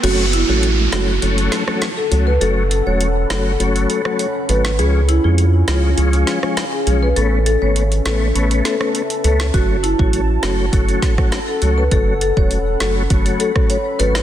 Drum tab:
CC |x---------------|----------------|----------------|----------------|
HH |x-x-x-x-xxx-x-x-|x-x-x-x-xxx-x-x-|x-x-x-x-xxx-x-x-|x-x-xxx-xxx-xxx-|
SD |------o---oro---|------o----r---o|------o---oro---|------o---or---o|
BD |----------------|----------------|----------------|----------------|

CC |----------------|----------------|
HH |x-x-x-x-xxx-x-x-|x-x-x-x-xxx-x-x-|
SD |------o---oro---|------o----r---o|
BD |o--o----o-oo----|o--o----o--o----|